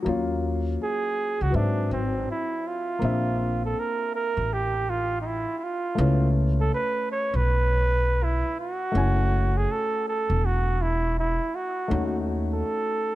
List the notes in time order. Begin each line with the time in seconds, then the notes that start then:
0.02 D#2 F#3 A#3 C#4
0.08 F4
0.83 G#4
1.41 C#2 F#4
1.50 G#2 F#3 C4 B4
1.56 D4 E5
1.91 G#1 C4
2.31 E4
2.68 F4
2.99 A#1 A#3 C4 D4
3.05 E5
3.65 A4
3.79 A#4
4.15 A#4
4.37 A1
4.53 G4
4.90 F4
5.21 D#4
5.26 E4
5.58 E4
5.64 F4
5.95 C#2 A3 B3
5.99 C#4 E4
6.60 A4
6.74 B4
7.11 C#5
7.34 B1 B4
8.23 E4
8.59 F#4
8.92 F#1 A3 C#4 E4
8.97 G#5
9.57 G#4
9.72 A4
10.08 A4
10.30 E1
10.45 F#4
10.82 E4
11.19 E4
11.55 F#4
11.88 D#2 A3 C#4 D#4
11.94 F#4
12.53 A4